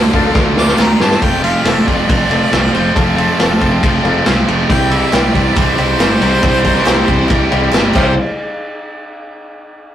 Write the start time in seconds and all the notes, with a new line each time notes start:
Already playing: D3 A3 D4 F4 D5
0.12 D2 D3 A3 D4 F4 A4, kick
0.25 D4 F4 A4
0.34 D2 D3 A3 D4 F4, kick, snare
0.56 D2 D3 A3 D4 F4 D6, snare
0.68 snare
0.77 D2 D3 A3 D4 F4 A#5, snare, clap
0.99 G2 D3 A3 D4 F4 A5, snare
1.11 snare
1.21 F1 F2 C3 F3 A3 C4 F4 A4 C5 G5, kick, ride
1.43 F2 C3 F3 A3 C4 F4 F5, ride
1.64 F1 F2 C3 F3 A3 C4 F4 A4 E5, snare, ride
1.86 F1 F2 C3 F3 A3 C4 F4 D5, kick, ride
2.08 F1 F2 C3 F3 A3 C4 F4, kick, ride
2.29 F1 F2 C3 F3 A3 C4 F4 A4, ride
2.52 C2 F2 C3 F3 A3 C4 F4, snare, ride
2.73 F1 F2 C3 F3 A3 C4 F4 C5, ride
2.94 F1 F2 C3 F3 A3 C4 F4 A4, kick, ride
3.17 F2 C3 F3 A3 C4 F4, ride
3.38 F1 F2 C3 F3 A3 C4 F4 A4, snare, ride
3.61 F1 F2 C3 F3 A3 C4 F4, kick, ride
3.82 F1 F2 C3 F3 A3 C4 F4, kick, ride
4.03 F1 F2 C3 F3 A3 C4 F4 A4, ride
4.26 C2 F2 C3 F3 A3 C4 F4, snare, ride
4.48 F1 F2 C3 F3 A3 C4 F4, ride
4.69 C2 C3 E3 G3 C4 E4 G4 C5 G5, kick, ride
4.91 C3 E3 G3 C4 E4 E5, ride
5.12 C2 C3 E3 G3 C4 E4 G4 D5, snare, clap, ride
5.34 C2 C3 E3 G3 C4 E4, kick, ride
5.56 C2 C3 E3 G3 C4 E4 C5, kick, clap, ride
5.78 C2 C3 E3 G3 C4 E4 G4, ride
6.00 G1 C3 E3 G3 C4 E4, snare, clap, ride
6.21 C2 C3 E3 G3 C4 E4 C5, ride
6.42 C2 C3 E3 G3 C4 E4 G4 C5, kick, ride
6.64 C3 E3 G3 C4 E4 G4 A#4, kick, ride
6.76 snare
6.86 C2 C3 E3 G3 C4 E4 G4 A#4, snare, clap, ride
7.07 C2 C3 E3 G3 C4 E4 C5, kick, ride
7.29 C2 C3 E3 G3 C4 E4, kick, clap, ride
7.51 C2 C3 E3 G3 C4 E4 G4, ride
7.72 G1 C3 E3 G3 C4 E4, snare, clap, ride
7.94 C2 C3 E3 G3 C4 E4 G4 C5, kick, clap, crash